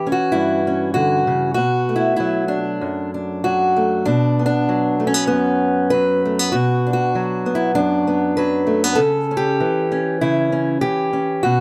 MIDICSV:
0, 0, Header, 1, 2, 480
1, 0, Start_track
1, 0, Key_signature, 2, "minor"
1, 0, Tempo, 611621
1, 1232, Time_signature, 4, 2, 24, 8
1, 1713, Tempo, 623701
1, 4593, Tempo, 612245
1, 9045, End_track
2, 0, Start_track
2, 0, Title_t, "Steel-string acoustic guitar"
2, 0, Program_c, 0, 25
2, 0, Note_on_c, 0, 52, 54
2, 0, Note_on_c, 0, 64, 38
2, 0, Note_on_c, 0, 67, 86
2, 52, Note_on_c, 0, 61, 44
2, 91, Note_off_c, 0, 67, 0
2, 94, Note_on_c, 0, 66, 78
2, 241, Note_off_c, 0, 64, 0
2, 250, Note_on_c, 0, 64, 81
2, 268, Note_on_c, 0, 43, 57
2, 517, Note_off_c, 0, 61, 0
2, 527, Note_on_c, 0, 61, 43
2, 727, Note_off_c, 0, 66, 0
2, 737, Note_on_c, 0, 66, 78
2, 750, Note_on_c, 0, 50, 53
2, 991, Note_off_c, 0, 50, 0
2, 998, Note_on_c, 0, 49, 58
2, 1201, Note_off_c, 0, 43, 0
2, 1202, Note_off_c, 0, 66, 0
2, 1211, Note_off_c, 0, 61, 0
2, 1211, Note_on_c, 0, 66, 85
2, 1221, Note_off_c, 0, 64, 0
2, 1232, Note_off_c, 0, 49, 0
2, 1232, Note_off_c, 0, 52, 0
2, 1235, Note_on_c, 0, 47, 66
2, 1483, Note_on_c, 0, 57, 38
2, 1535, Note_on_c, 0, 64, 69
2, 1689, Note_off_c, 0, 64, 0
2, 1699, Note_on_c, 0, 64, 75
2, 1726, Note_on_c, 0, 54, 55
2, 1940, Note_off_c, 0, 64, 0
2, 1943, Note_on_c, 0, 62, 64
2, 2020, Note_off_c, 0, 66, 0
2, 2192, Note_off_c, 0, 47, 0
2, 2199, Note_on_c, 0, 42, 54
2, 2442, Note_off_c, 0, 62, 0
2, 2452, Note_on_c, 0, 62, 41
2, 2679, Note_off_c, 0, 54, 0
2, 2681, Note_on_c, 0, 66, 76
2, 2689, Note_on_c, 0, 54, 54
2, 2921, Note_off_c, 0, 57, 0
2, 2930, Note_on_c, 0, 57, 39
2, 3137, Note_off_c, 0, 54, 0
2, 3141, Note_off_c, 0, 62, 0
2, 3154, Note_on_c, 0, 62, 81
2, 3162, Note_off_c, 0, 66, 0
2, 3164, Note_off_c, 0, 42, 0
2, 3166, Note_off_c, 0, 57, 0
2, 3167, Note_on_c, 0, 47, 61
2, 3415, Note_on_c, 0, 59, 36
2, 3455, Note_off_c, 0, 62, 0
2, 3464, Note_on_c, 0, 62, 79
2, 3640, Note_on_c, 0, 54, 56
2, 3876, Note_off_c, 0, 59, 0
2, 3879, Note_on_c, 0, 57, 39
2, 3932, Note_off_c, 0, 62, 0
2, 3935, Note_on_c, 0, 61, 75
2, 3989, Note_off_c, 0, 57, 0
2, 3989, Note_on_c, 0, 59, 35
2, 4083, Note_off_c, 0, 59, 0
2, 4092, Note_on_c, 0, 59, 76
2, 4115, Note_on_c, 0, 42, 56
2, 4121, Note_off_c, 0, 47, 0
2, 4576, Note_on_c, 0, 71, 90
2, 4581, Note_off_c, 0, 61, 0
2, 4590, Note_off_c, 0, 54, 0
2, 4599, Note_on_c, 0, 54, 53
2, 4820, Note_off_c, 0, 59, 0
2, 4851, Note_on_c, 0, 57, 41
2, 4959, Note_off_c, 0, 57, 0
2, 4959, Note_on_c, 0, 59, 32
2, 5048, Note_off_c, 0, 54, 0
2, 5056, Note_off_c, 0, 71, 0
2, 5059, Note_on_c, 0, 66, 82
2, 5072, Note_off_c, 0, 42, 0
2, 5075, Note_on_c, 0, 47, 65
2, 5076, Note_off_c, 0, 59, 0
2, 5331, Note_on_c, 0, 62, 39
2, 5373, Note_off_c, 0, 66, 0
2, 5383, Note_on_c, 0, 66, 78
2, 5555, Note_on_c, 0, 54, 55
2, 5798, Note_on_c, 0, 59, 45
2, 5864, Note_off_c, 0, 62, 0
2, 5867, Note_on_c, 0, 64, 82
2, 6021, Note_off_c, 0, 64, 0
2, 6024, Note_on_c, 0, 62, 89
2, 6033, Note_on_c, 0, 42, 56
2, 6040, Note_off_c, 0, 47, 0
2, 6268, Note_off_c, 0, 59, 0
2, 6278, Note_on_c, 0, 59, 44
2, 6354, Note_off_c, 0, 66, 0
2, 6508, Note_on_c, 0, 71, 85
2, 6509, Note_off_c, 0, 54, 0
2, 6518, Note_on_c, 0, 54, 56
2, 6739, Note_off_c, 0, 59, 0
2, 6742, Note_on_c, 0, 57, 44
2, 6876, Note_off_c, 0, 57, 0
2, 6876, Note_on_c, 0, 59, 35
2, 6964, Note_off_c, 0, 71, 0
2, 6967, Note_on_c, 0, 69, 95
2, 6970, Note_off_c, 0, 54, 0
2, 6990, Note_on_c, 0, 49, 65
2, 6993, Note_off_c, 0, 62, 0
2, 6997, Note_off_c, 0, 42, 0
2, 6998, Note_off_c, 0, 59, 0
2, 7247, Note_on_c, 0, 61, 42
2, 7293, Note_on_c, 0, 67, 86
2, 7473, Note_off_c, 0, 49, 0
2, 7477, Note_on_c, 0, 52, 59
2, 7713, Note_off_c, 0, 61, 0
2, 7723, Note_on_c, 0, 61, 45
2, 7779, Note_off_c, 0, 69, 0
2, 7942, Note_off_c, 0, 67, 0
2, 7955, Note_on_c, 0, 64, 83
2, 7960, Note_on_c, 0, 49, 60
2, 8189, Note_off_c, 0, 61, 0
2, 8198, Note_on_c, 0, 61, 45
2, 8422, Note_off_c, 0, 64, 0
2, 8423, Note_off_c, 0, 52, 0
2, 8425, Note_on_c, 0, 67, 85
2, 8433, Note_on_c, 0, 52, 56
2, 8436, Note_off_c, 0, 49, 0
2, 8665, Note_off_c, 0, 61, 0
2, 8675, Note_on_c, 0, 61, 40
2, 8885, Note_off_c, 0, 61, 0
2, 8908, Note_on_c, 0, 66, 87
2, 8909, Note_off_c, 0, 67, 0
2, 8913, Note_off_c, 0, 52, 0
2, 8923, Note_on_c, 0, 47, 65
2, 9045, Note_off_c, 0, 47, 0
2, 9045, Note_off_c, 0, 66, 0
2, 9045, End_track
0, 0, End_of_file